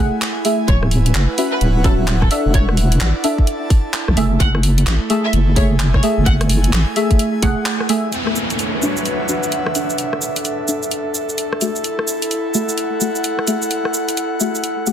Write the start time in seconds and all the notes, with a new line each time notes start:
Already playing: A3 E4 G#5
0.00 F#1 A3 G#4 F#5
0.22 clap, open hi-hat
0.45 A3 G#4 E5, open hi-hat
0.68 D1 C#5, kick, closed hi-hat
0.77 B4
0.83 cross-stick
0.91 F#5, open hi-hat
1.06 closed hi-hat
1.15 F#1, clap, closed hi-hat
1.33 C#5
1.38 C#4 F#4 B4 E5, open hi-hat
1.52 B4
1.61 D1, closed hi-hat
1.84 C#4 F#4 A4 B4 E5, kick, open hi-hat
2.08 clap, closed hi-hat
2.22 A4, kick, cross-stick
2.31 D4 A4 E5, open hi-hat
2.46 E1
2.54 C#5, kick, closed hi-hat
2.69 cross-stick
2.77 D5, open hi-hat
2.92 closed hi-hat
3.01 A1, clap, closed hi-hat
3.17 A5
3.24 D4 A4 E5, open hi-hat
3.38 kick
3.47 closed hi-hat
3.70 kick, open hi-hat
3.94 clap, open hi-hat
4.08 B1, cross-stick
4.17 F#1 A3 G#4 E5, open hi-hat
4.31 A3
4.40 F#1 F#5, kick, closed hi-hat
4.55 cross-stick
4.63 open hi-hat
4.78 closed hi-hat
4.87 A1, clap, closed hi-hat
5.10 A3 G#4 E5, open hi-hat
5.19 G#5
5.25 E5
5.33 F#1, closed hi-hat
5.56 A3 G#4 C#5 E5, kick, open hi-hat
5.80 clap, closed hi-hat
5.94 C#5, kick, cross-stick
6.03 A3 G#4 E5, open hi-hat
6.18 F#1
6.26 F#5, kick, closed hi-hat
6.41 cross-stick, closed hi-hat
6.49 open hi-hat
6.64 closed hi-hat
6.73 A1, clap, closed hi-hat
6.96 A3 G#4 E5, open hi-hat
7.11 kick, closed hi-hat
7.19 closed hi-hat
7.42 F#1 A3 G#4 F#5, kick, open hi-hat
7.66 clap, open hi-hat
7.80 cross-stick
7.89 A3 G#4 E5, open hi-hat
8.12 D4, closed hi-hat, downlifter, shaker
8.27 B4 C#5, cross-stick
8.36 shaker
8.50 E5, closed hi-hat, shaker
8.59 closed hi-hat, shaker
8.82 D4 F#4 B4 C#5 E5, shaker
8.87 F#5
8.97 shaker
9.06 closed hi-hat, shaker
9.29 D4 F#4 B4 C#5 E5, shaker
9.43 shaker
9.52 closed hi-hat, shaker
9.67 cross-stick
9.75 D4 A4 E5, closed hi-hat, shaker
9.90 shaker
9.98 A4, closed hi-hat, shaker
10.13 cross-stick
10.22 shaker
10.36 closed hi-hat, shaker
10.45 closed hi-hat, shaker
10.68 D4 A4 E5, shaker
10.83 shaker
10.91 closed hi-hat, shaker
11.15 shaker
11.29 shaker
11.38 closed hi-hat, shaker
11.53 cross-stick
11.61 A3 E4 F#4 G#4 E5, closed hi-hat, shaker
11.76 shaker
11.84 closed hi-hat, shaker
11.99 cross-stick
12.08 shaker
12.22 closed hi-hat, shaker
12.31 closed hi-hat, shaker
12.37 F#5
12.54 A3 F#4 G#4 E5, shaker
12.69 shaker
12.78 closed hi-hat, shaker
13.01 A3 F#4 G#4 E5, shaker
13.15 shaker
13.24 closed hi-hat, shaker
13.39 cross-stick
13.47 A3 F#4 G#4 E5, closed hi-hat, shaker
13.62 shaker
13.71 closed hi-hat, shaker
13.85 cross-stick
13.94 shaker
14.09 closed hi-hat, shaker
14.17 closed hi-hat, shaker
14.40 A3 F#4 G#4 E5, shaker
14.55 shaker
14.64 closed hi-hat, shaker
14.87 A3 F#4 G#4 F#5, shaker